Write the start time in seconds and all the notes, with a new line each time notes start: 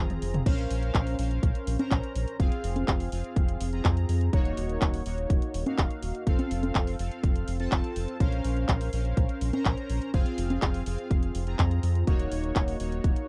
Already playing: F1 C4 F4 G#4 A#5
0.10 closed hi-hat, mid tom
0.22 F1, open hi-hat
0.34 closed hi-hat, mid tom
0.46 A#1 C#4 A#4 C5 F5, kick, closed hi-hat, crash
0.58 closed hi-hat
0.70 A#1, open hi-hat
0.83 closed hi-hat
0.94 A#1, kick, clap, closed hi-hat
1.07 open hi-hat
1.19 A#1 C#4 A#4 C5 F5, open hi-hat
1.31 closed hi-hat
1.43 A#1, kick, closed hi-hat
1.55 closed hi-hat
1.67 A#1, open hi-hat
1.79 C#4 A#4 C5 A#5, closed hi-hat, high conga
1.91 A#1, kick, clap, closed hi-hat
2.03 closed hi-hat
2.15 A#1, open hi-hat
2.28 closed hi-hat
2.40 F1 C4 F4 G#4 F5, kick, closed hi-hat
2.52 closed hi-hat
2.64 F1, open hi-hat
2.76 closed hi-hat, high conga
2.88 F1, kick, clap, closed hi-hat
3.00 open hi-hat
3.12 F1 C4 F4 G#4 F5, open hi-hat
3.24 closed hi-hat
3.36 F1, kick, closed hi-hat
3.49 closed hi-hat
3.61 F1, open hi-hat
3.73 C4 F4 G#4 A#5, closed hi-hat
3.85 F2, kick, clap, closed hi-hat
3.97 closed hi-hat
4.09 F2, open hi-hat
4.21 closed hi-hat
4.33 D#1 A#3 D#4 F#4 C#5, kick, closed hi-hat
4.45 closed hi-hat
4.57 D#1, open hi-hat
4.69 closed hi-hat
4.82 D#1, kick, clap, closed hi-hat
4.94 open hi-hat
5.06 D#1 A#3 D#4 F#4 C#5, open hi-hat
5.18 closed hi-hat
5.30 D#1, kick, closed hi-hat
5.42 closed hi-hat
5.54 D#1, open hi-hat
5.66 A#3 D#4 F#4 F5, closed hi-hat, high conga
5.78 D#1, kick, clap, closed hi-hat
5.91 closed hi-hat
6.02 D#1, open hi-hat
6.15 closed hi-hat
6.27 F1 C4 F4 A4 F5, kick, closed hi-hat
6.39 closed hi-hat, high conga
6.51 F1, open hi-hat
6.63 closed hi-hat, high conga
6.75 F1, kick, clap, closed hi-hat
6.87 open hi-hat
6.99 F1 C4 F4 A4 F5, open hi-hat
7.11 closed hi-hat
7.23 F1, kick, closed hi-hat
7.36 closed hi-hat
7.48 F1, open hi-hat
7.60 C4 F4 A4 A5, closed hi-hat
7.72 F1, kick, clap, closed hi-hat
7.84 closed hi-hat
7.96 F1, open hi-hat
8.08 closed hi-hat
8.20 A#1 C#4 A#4 C5 F5, kick, closed hi-hat
8.32 closed hi-hat
8.45 A#1, open hi-hat
8.57 closed hi-hat
8.69 A#1, kick, clap, closed hi-hat
8.81 open hi-hat
8.93 A#1 C#4 A#4 C5 F5, open hi-hat
9.05 closed hi-hat
9.17 A#1, kick, closed hi-hat
9.29 closed hi-hat
9.41 A#1, open hi-hat
9.53 C#4 A#4 C5 A#5, closed hi-hat, high conga
9.65 A#1, kick, clap, closed hi-hat
9.77 closed hi-hat
9.90 A#1, open hi-hat
10.02 closed hi-hat
10.14 F1 C4 F4 G#4 F5, kick, closed hi-hat
10.26 closed hi-hat
10.38 F1, open hi-hat
10.50 closed hi-hat, high conga
10.62 F1, kick, clap, closed hi-hat
10.74 open hi-hat
10.86 F1 C4 F4 G#4 F5, open hi-hat
10.98 closed hi-hat
11.11 F1, kick, closed hi-hat
11.23 closed hi-hat
11.35 F1, open hi-hat
11.47 C4 F4 G#4 A#5, closed hi-hat
11.59 F2, kick, clap, closed hi-hat
11.71 closed hi-hat
11.83 F2, open hi-hat
11.95 closed hi-hat
12.07 D#1 A#3 D#4 F#4 C#5, kick, closed hi-hat
12.20 closed hi-hat
12.32 D#1, open hi-hat
12.44 closed hi-hat
12.56 D#1, kick, clap, closed hi-hat
12.68 open hi-hat
12.80 D#1 A#3 D#4 F#4 C#5, open hi-hat
12.92 closed hi-hat
13.04 D#1, kick, closed hi-hat
13.16 closed hi-hat